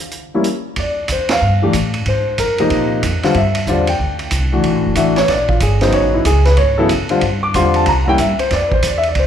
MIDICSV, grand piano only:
0, 0, Header, 1, 2, 480
1, 0, Start_track
1, 0, Tempo, 322581
1, 1146, Time_signature, 4, 2, 24, 8
1, 13791, End_track
2, 0, Start_track
2, 0, Title_t, "Grand piano"
2, 0, Program_c, 0, 0
2, 511, Note_on_c, 0, 55, 65
2, 517, Note_on_c, 0, 58, 59
2, 519, Note_on_c, 0, 61, 59
2, 520, Note_on_c, 0, 64, 67
2, 659, Note_off_c, 0, 55, 0
2, 663, Note_off_c, 0, 58, 0
2, 663, Note_off_c, 0, 61, 0
2, 664, Note_off_c, 0, 64, 0
2, 1176, Note_on_c, 0, 74, 68
2, 1608, Note_off_c, 0, 74, 0
2, 1667, Note_on_c, 0, 72, 63
2, 1940, Note_off_c, 0, 72, 0
2, 1958, Note_on_c, 0, 77, 81
2, 2414, Note_on_c, 0, 52, 62
2, 2418, Note_on_c, 0, 57, 55
2, 2424, Note_on_c, 0, 62, 56
2, 2427, Note_on_c, 0, 67, 67
2, 2555, Note_off_c, 0, 77, 0
2, 2571, Note_off_c, 0, 52, 0
2, 2573, Note_off_c, 0, 57, 0
2, 2575, Note_off_c, 0, 62, 0
2, 2577, Note_off_c, 0, 67, 0
2, 3099, Note_on_c, 0, 72, 67
2, 3529, Note_off_c, 0, 72, 0
2, 3558, Note_on_c, 0, 70, 70
2, 3845, Note_off_c, 0, 70, 0
2, 3866, Note_on_c, 0, 48, 70
2, 3868, Note_on_c, 0, 58, 65
2, 3868, Note_on_c, 0, 63, 81
2, 3870, Note_on_c, 0, 53, 65
2, 3875, Note_on_c, 0, 75, 74
2, 4474, Note_off_c, 0, 75, 0
2, 4478, Note_off_c, 0, 48, 0
2, 4479, Note_off_c, 0, 63, 0
2, 4480, Note_off_c, 0, 58, 0
2, 4481, Note_off_c, 0, 53, 0
2, 4815, Note_on_c, 0, 50, 75
2, 4821, Note_on_c, 0, 60, 69
2, 4824, Note_on_c, 0, 55, 71
2, 4830, Note_on_c, 0, 65, 81
2, 4971, Note_off_c, 0, 50, 0
2, 4974, Note_off_c, 0, 60, 0
2, 4975, Note_off_c, 0, 55, 0
2, 4978, Note_off_c, 0, 65, 0
2, 5011, Note_on_c, 0, 76, 78
2, 5445, Note_off_c, 0, 76, 0
2, 5476, Note_on_c, 0, 50, 61
2, 5479, Note_on_c, 0, 55, 56
2, 5483, Note_on_c, 0, 60, 56
2, 5486, Note_on_c, 0, 65, 68
2, 5495, Note_on_c, 0, 74, 73
2, 5742, Note_off_c, 0, 50, 0
2, 5744, Note_off_c, 0, 55, 0
2, 5746, Note_off_c, 0, 60, 0
2, 5747, Note_off_c, 0, 65, 0
2, 5774, Note_off_c, 0, 74, 0
2, 5786, Note_on_c, 0, 79, 76
2, 6388, Note_off_c, 0, 79, 0
2, 6730, Note_on_c, 0, 52, 62
2, 6733, Note_on_c, 0, 57, 54
2, 6736, Note_on_c, 0, 62, 55
2, 6743, Note_on_c, 0, 66, 65
2, 7351, Note_off_c, 0, 52, 0
2, 7352, Note_off_c, 0, 57, 0
2, 7354, Note_off_c, 0, 62, 0
2, 7357, Note_off_c, 0, 66, 0
2, 7382, Note_on_c, 0, 52, 60
2, 7385, Note_on_c, 0, 66, 72
2, 7387, Note_on_c, 0, 57, 60
2, 7390, Note_on_c, 0, 62, 58
2, 7392, Note_on_c, 0, 76, 74
2, 7656, Note_off_c, 0, 52, 0
2, 7657, Note_off_c, 0, 66, 0
2, 7658, Note_off_c, 0, 57, 0
2, 7660, Note_off_c, 0, 62, 0
2, 7682, Note_off_c, 0, 76, 0
2, 7686, Note_on_c, 0, 73, 82
2, 7859, Note_off_c, 0, 73, 0
2, 7872, Note_on_c, 0, 74, 82
2, 8162, Note_off_c, 0, 74, 0
2, 8173, Note_on_c, 0, 65, 59
2, 8342, Note_off_c, 0, 65, 0
2, 8366, Note_on_c, 0, 68, 65
2, 8649, Note_off_c, 0, 68, 0
2, 8652, Note_on_c, 0, 49, 59
2, 8653, Note_on_c, 0, 72, 78
2, 8659, Note_on_c, 0, 54, 56
2, 8659, Note_on_c, 0, 59, 57
2, 8667, Note_on_c, 0, 63, 72
2, 8823, Note_off_c, 0, 72, 0
2, 8831, Note_on_c, 0, 73, 86
2, 9122, Note_off_c, 0, 73, 0
2, 9138, Note_on_c, 0, 64, 65
2, 9272, Note_off_c, 0, 49, 0
2, 9276, Note_off_c, 0, 54, 0
2, 9276, Note_off_c, 0, 59, 0
2, 9280, Note_off_c, 0, 63, 0
2, 9305, Note_off_c, 0, 64, 0
2, 9316, Note_on_c, 0, 68, 75
2, 9604, Note_off_c, 0, 68, 0
2, 9605, Note_on_c, 0, 71, 77
2, 9779, Note_off_c, 0, 71, 0
2, 9783, Note_on_c, 0, 73, 75
2, 10078, Note_off_c, 0, 73, 0
2, 10083, Note_on_c, 0, 69, 84
2, 10098, Note_on_c, 0, 49, 70
2, 10100, Note_on_c, 0, 59, 65
2, 10101, Note_on_c, 0, 54, 63
2, 10111, Note_on_c, 0, 64, 78
2, 10191, Note_off_c, 0, 69, 0
2, 10253, Note_off_c, 0, 49, 0
2, 10254, Note_off_c, 0, 54, 0
2, 10254, Note_off_c, 0, 59, 0
2, 10259, Note_off_c, 0, 64, 0
2, 10565, Note_on_c, 0, 50, 69
2, 10573, Note_on_c, 0, 60, 65
2, 10574, Note_on_c, 0, 65, 78
2, 10576, Note_on_c, 0, 55, 60
2, 10726, Note_off_c, 0, 50, 0
2, 10731, Note_off_c, 0, 60, 0
2, 10731, Note_off_c, 0, 65, 0
2, 10732, Note_off_c, 0, 55, 0
2, 11055, Note_on_c, 0, 86, 80
2, 11224, Note_off_c, 0, 86, 0
2, 11233, Note_on_c, 0, 50, 65
2, 11233, Note_on_c, 0, 55, 62
2, 11236, Note_on_c, 0, 84, 81
2, 11237, Note_on_c, 0, 60, 62
2, 11250, Note_on_c, 0, 65, 73
2, 11525, Note_off_c, 0, 84, 0
2, 11541, Note_on_c, 0, 81, 83
2, 11707, Note_off_c, 0, 81, 0
2, 11710, Note_off_c, 0, 50, 0
2, 11710, Note_off_c, 0, 55, 0
2, 11712, Note_off_c, 0, 60, 0
2, 11718, Note_off_c, 0, 65, 0
2, 11726, Note_on_c, 0, 82, 84
2, 11966, Note_on_c, 0, 78, 59
2, 11992, Note_off_c, 0, 78, 0
2, 12010, Note_off_c, 0, 82, 0
2, 12011, Note_on_c, 0, 55, 68
2, 12011, Note_on_c, 0, 58, 57
2, 12017, Note_on_c, 0, 61, 63
2, 12020, Note_on_c, 0, 64, 75
2, 12037, Note_on_c, 0, 79, 97
2, 12170, Note_off_c, 0, 55, 0
2, 12170, Note_off_c, 0, 58, 0
2, 12173, Note_off_c, 0, 61, 0
2, 12175, Note_off_c, 0, 64, 0
2, 12196, Note_off_c, 0, 79, 0
2, 12203, Note_on_c, 0, 76, 70
2, 12488, Note_off_c, 0, 76, 0
2, 12492, Note_on_c, 0, 72, 82
2, 12663, Note_off_c, 0, 72, 0
2, 12692, Note_on_c, 0, 74, 85
2, 12923, Note_on_c, 0, 71, 53
2, 12950, Note_off_c, 0, 71, 0
2, 12973, Note_off_c, 0, 74, 0
2, 12992, Note_on_c, 0, 72, 83
2, 13154, Note_off_c, 0, 72, 0
2, 13197, Note_on_c, 0, 74, 68
2, 13328, Note_off_c, 0, 74, 0
2, 13359, Note_on_c, 0, 76, 86
2, 13489, Note_off_c, 0, 76, 0
2, 13516, Note_on_c, 0, 74, 66
2, 13647, Note_off_c, 0, 74, 0
2, 13680, Note_on_c, 0, 72, 71
2, 13791, Note_off_c, 0, 72, 0
2, 13791, End_track
0, 0, End_of_file